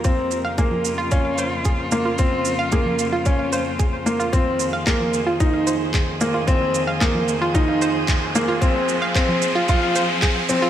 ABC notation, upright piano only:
X:1
M:4/4
L:1/8
Q:1/4=112
K:Ab
V:1 name="Upright piano"
C2 B,2 D2 z B, | C2 B,2 D2 z B, | C2 B,2 E2 z B, | C2 B,2 E2 z B, |
C2 C2 F2 z C |]